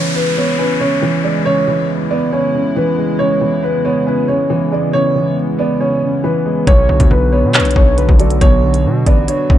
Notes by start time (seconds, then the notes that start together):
Already playing: C#3 E3 G#3 B3 E4 C#5, downlifter
0.15 B4
0.37 B3 C#5
0.59 C#4 B4
0.80 C#3 C#5
1.02 E3
1.24 G#3 D5
1.46 C#3 C#5
1.67 E3
2.10 B3 D5
2.33 C#4 C#5
2.54 C#3
2.76 E3 B4
2.98 G#3
3.19 C#3 C#5
3.41 E3
3.63 B4
3.85 B3 C#5
4.06 C#4 B4
4.28 C#3 C#5
4.50 E3
4.72 G#3 D5
4.93 C#3 C#5
5.15 E3
5.59 B3 D5
5.80 C#4 C#5
6.02 C#3
6.24 E3 B4
6.46 G#3
6.67 B1 B2 D3 F#3 F#4 C#5, kick, closed hi-hat
6.89 B1 D3
7.00 D2, kick, closed hi-hat
7.11 B1 B4
7.32 B3 C#5
7.43 B2
7.54 B4 C#5, clap, closed hi-hat
7.60 B1, closed hi-hat
7.65 closed hi-hat
7.71 closed hi-hat
7.76 B1 B2 C#5, kick
7.98 D3 B4, closed hi-hat
8.09 B1, kick
8.19 F#3 A4 D5, closed hi-hat
8.30 closed hi-hat
8.41 B1 B2 C#5, kick, closed hi-hat
8.63 D3
8.74 closed hi-hat
8.85 B2
9.06 A1 B3 D5, kick, closed hi-hat
9.28 D4 C#5, closed hi-hat
9.50 A1 B2, kick